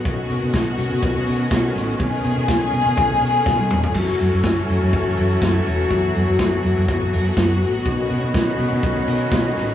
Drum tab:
CC |----------------|----------------|x---------------|----------------|
HH |x-o-x-o-x-o-x-o-|x-o-x-o-x-o-----|--o-x-o-x-o-x-o-|x-o-x-o-x-o-x-o-|
SD |----o-------o-o-|----o-------o---|----o-------o---|----o-------o---|
T1 |----------------|-------------o--|----------------|----------------|
T2 |----------------|--------------o-|----------------|----------------|
FT |----------------|---------------o|----------------|----------------|
BD |o---o---o---o---|o---o---o---o---|o---o---o---o---|o---o---o---o---|

CC |----------------|
HH |x-o-x-o-x-o-x-o-|
SD |----o-------o-o-|
T1 |----------------|
T2 |----------------|
FT |----------------|
BD |o---o---o---o---|